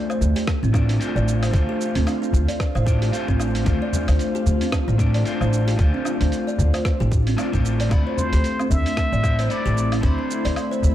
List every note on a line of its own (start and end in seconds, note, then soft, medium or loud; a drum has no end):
0.00 0.70 A3 medium
0.00 7.91 A3 medium
0.00 0.46 C4 medium
0.00 0.71 D4 medium
0.00 7.91 D4 medium
0.00 0.72 F4 medium
0.00 7.91 F4 medium
0.00 0.72 C5 loud
0.00 7.91 F5 medium
0.10 0.21 C5 medium
0.10 low woodblock medium
0.10 shaker soft
0.21 0.32 D2 medium
0.21 frame drum medium
0.21 shaker medium
0.31 7.91 C5 medium
0.36 0.47 G4 medium
0.36 open hi-hat medium
0.36 shaker soft
0.47 kick loud
0.47 cross-stick medium
0.47 open hi-hat soft
0.47 shaker soft
0.63 0.96 A1 medium
0.63 0.69 C4 medium
0.63 shaker soft
0.73 0.97 A3 medium
0.73 0.98 D4 medium
0.73 0.88 D4 medium
0.73 0.98 F4 medium
0.73 0.98 D5 medium
0.73 kick loud
0.73 low woodblock medium
0.73 shaker medium
0.89 1.00 D4 medium
0.89 open hi-hat medium
0.89 shaker soft
0.99 1.50 A3 medium
0.99 1.51 D4 medium
0.99 1.51 F4 medium
0.99 1.51 C5 loud
0.99 open hi-hat soft
0.99 shaker soft
1.16 1.49 A1 medium
1.16 1.41 D5 medium
1.16 shaker soft
1.28 shaker medium
1.43 1.53 C5 medium
1.43 open hi-hat medium
1.43 low woodblock medium
1.43 shaker soft
1.51 1.65 D2 loud
1.51 2.83 A3 medium
1.51 2.83 D4 medium
1.51 2.84 F4 medium
1.51 kick loud
1.51 open hi-hat soft
1.51 shaker soft
1.55 2.85 C5 loud
1.69 1.80 G4 medium
1.81 shaker medium
1.95 2.04 D2 medium
1.95 2.02 C4 medium
1.95 open hi-hat medium
1.95 shaker soft
2.07 2.21 D4 loud
2.07 open hi-hat soft
2.07 low woodblock medium
2.07 shaker soft
2.22 2.33 D4 medium
2.22 shaker soft
2.33 2.45 D2 medium
2.33 frame drum medium
2.33 shaker medium
2.48 2.74 D5 medium
2.48 open hi-hat medium
2.48 shaker soft
2.60 kick loud
2.60 cross-stick medium
2.60 open hi-hat soft
2.60 shaker soft
2.75 3.08 A1 loud
2.75 2.86 C5 medium
2.75 low woodblock medium
2.75 shaker soft
2.86 3.10 A3 medium
2.86 3.10 D4 medium
2.86 3.11 F4 medium
2.86 3.11 D5 medium
2.86 kick loud
2.86 shaker medium
3.02 3.13 G4 loud
3.02 open hi-hat medium
3.02 shaker soft
3.12 3.63 A3 medium
3.12 3.63 D4 medium
3.12 3.64 F4 medium
3.12 3.64 C5 loud
3.12 open hi-hat soft
3.12 shaker soft
3.28 3.61 A1 medium
3.28 3.35 C4 medium
3.28 kick medium
3.28 shaker soft
3.40 3.54 D4 loud
3.40 low woodblock medium
3.40 shaker medium
3.55 3.66 D4 medium
3.55 open hi-hat medium
3.55 shaker soft
3.64 3.78 D2 loud
3.64 4.95 A3 medium
3.64 4.96 D4 medium
3.64 4.97 F4 medium
3.64 4.97 C5 loud
3.64 kick loud
3.64 open hi-hat soft
3.64 shaker soft
3.82 4.07 D5 medium
3.93 frame drum medium
3.93 shaker medium
4.08 4.16 D2 medium
4.08 4.19 C5 medium
4.08 open hi-hat medium
4.08 low woodblock medium
4.08 shaker soft
4.19 open hi-hat soft
4.19 shaker soft
4.35 4.45 G4 loud
4.35 shaker soft
4.46 4.57 D2 medium
4.46 frame drum medium
4.46 shaker medium
4.61 4.68 C4 medium
4.61 open hi-hat medium
4.61 shaker soft
4.72 4.87 D4 loud
4.72 kick loud
4.72 cross-stick medium
4.72 open hi-hat soft
4.72 low woodblock medium
4.72 shaker soft
4.88 5.21 A1 loud
4.88 4.98 D4 medium
4.88 shaker soft
4.98 5.22 A3 medium
4.98 5.23 D4 medium
4.98 5.23 F4 medium
4.98 5.23 D5 medium
4.98 kick loud
4.98 shaker medium
5.14 5.39 D5 medium
5.14 open hi-hat medium
5.14 shaker soft
5.24 5.75 A3 medium
5.24 5.76 D4 medium
5.24 5.76 F4 medium
5.24 5.76 C5 loud
5.24 open hi-hat soft
5.24 shaker soft
5.41 5.74 A1 medium
5.41 5.52 C5 medium
5.41 low woodblock medium
5.41 shaker soft
5.53 shaker medium
5.68 5.78 G4 loud
5.68 open hi-hat medium
5.68 shaker soft
5.76 5.90 D2 loud
5.76 7.08 A3 medium
5.76 7.08 D4 medium
5.76 7.09 F4 medium
5.76 7.09 C5 loud
5.76 kick loud
5.76 open hi-hat soft
5.76 shaker soft
5.94 6.00 C4 medium
6.05 6.20 D4 loud
6.05 low woodblock medium
6.05 shaker medium
6.21 6.29 D2 medium
6.21 6.31 D4 medium
6.21 open hi-hat medium
6.21 shaker soft
6.32 open hi-hat soft
6.32 shaker soft
6.47 6.72 D5 medium
6.47 shaker soft
6.58 6.70 D2 medium
6.58 frame drum medium
6.58 shaker medium
6.74 6.84 C5 medium
6.74 open hi-hat medium
6.74 low woodblock medium
6.74 shaker soft
6.85 kick loud
6.85 cross-stick medium
6.85 open hi-hat soft
6.85 shaker soft
7.00 7.33 A1 loud
7.00 7.11 G4 loud
7.00 shaker soft
7.12 kick loud
7.12 shaker medium
7.27 7.33 C4 medium
7.27 open hi-hat medium
7.27 shaker soft
7.37 7.49 A3 medium
7.37 7.49 D4 medium
7.37 7.52 D4 loud
7.37 7.50 F4 medium
7.37 7.50 D5 medium
7.37 open hi-hat soft
7.37 low woodblock medium
7.37 shaker soft
7.52 7.86 A1 medium
7.52 7.88 A3 medium
7.52 7.88 D4 medium
7.52 7.64 D4 medium
7.52 7.89 F4 medium
7.52 7.89 C5 loud
7.52 kick medium
7.52 shaker soft
7.65 shaker medium
7.80 7.91 D5 medium
7.80 open hi-hat medium
7.80 shaker soft
7.89 8.02 D2 medium
7.89 9.20 A3 medium
7.89 10.95 A3 medium
7.89 9.21 C4 medium
7.89 9.21 E4 medium
7.89 9.22 B5 loud
7.89 kick loud
7.89 open hi-hat soft
7.89 low woodblock medium
7.89 shaker soft
8.07 8.17 C5 medium
8.14 10.95 C4 medium
8.14 8.72 C5 loud
8.18 frame drum medium
8.18 shaker medium
8.33 8.41 D2 medium
8.33 8.44 G4 loud
8.33 open hi-hat medium
8.33 shaker soft
8.38 10.95 B5 loud
8.44 open hi-hat soft
8.44 shaker soft
8.53 10.95 E4 medium
8.59 8.66 C4 medium
8.59 low woodblock medium
8.59 shaker soft
8.70 8.82 D2 medium
8.70 8.85 D4 medium
8.70 9.52 E5 loud
8.70 frame drum medium
8.70 shaker medium
8.86 8.97 D4 medium
8.86 open hi-hat medium
8.86 shaker soft
8.97 kick loud
8.97 cross-stick medium
8.97 open hi-hat soft
8.97 shaker soft
9.03 10.95 E5 medium
9.12 9.46 A1 medium
9.12 9.38 D5 medium
9.12 shaker soft
9.23 9.47 A3 medium
9.23 9.48 C4 medium
9.23 9.48 E4 medium
9.23 9.48 C5 medium
9.23 kick loud
9.23 low woodblock medium
9.23 shaker medium
9.39 9.50 C5 medium
9.39 open hi-hat medium
9.39 shaker soft
9.49 10.00 A3 medium
9.49 10.01 C4 medium
9.49 10.01 E4 medium
9.49 10.02 D5 loud
9.49 10.01 B5 loud
9.49 open hi-hat soft
9.49 shaker soft
9.66 9.99 A1 medium
9.66 9.76 G4 loud
9.66 shaker soft
9.78 shaker medium
9.92 9.98 C4 medium
9.92 open hi-hat medium
9.92 low woodblock medium
9.92 shaker soft
10.01 10.15 D2 loud
10.01 10.95 A3 medium
10.01 10.95 C4 medium
10.01 10.17 D4 medium
10.01 10.95 E4 medium
10.01 10.79 C5 medium
10.01 10.95 B5 loud
10.01 kick loud
10.01 open hi-hat soft
10.01 shaker soft
10.19 10.29 D4 medium
10.31 shaker medium
10.45 10.53 D2 medium
10.45 10.70 D5 medium
10.45 open hi-hat medium
10.45 shaker soft
10.56 open hi-hat soft
10.56 low woodblock medium
10.56 shaker soft
10.71 10.82 C5 medium
10.71 shaker soft
10.83 10.94 D2 medium
10.83 frame drum medium
10.83 shaker medium